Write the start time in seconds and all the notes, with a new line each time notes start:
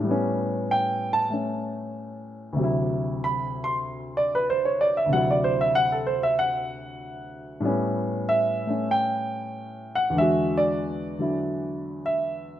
Already playing: G4
0.00 A2 G3
0.07 B3 C#4
0.71 G5
1.13 A5
1.30 A3 C#4
2.53 D2 C3
2.60 F#3
2.64 E4
3.24 B5
3.64 C6
4.17 D5
4.35 B4
4.50 C5
4.65 C#5
4.81 D5
4.97 E5
5.06 D2 C3
5.13 F#3 E4 F#5
5.31 D5
5.44 C5
5.61 E5
5.75 F#5
5.92 A4
6.07 C5
6.23 E5
6.39 F#5
7.60 A2 G3 B3
7.66 C#4
8.29 E5
8.67 A3 C#4
8.91 G5
9.95 F#5
10.10 E2 D3
10.17 G#3 E5
10.21 F#4
10.58 D5
11.19 D3 F#3 E4
12.06 E5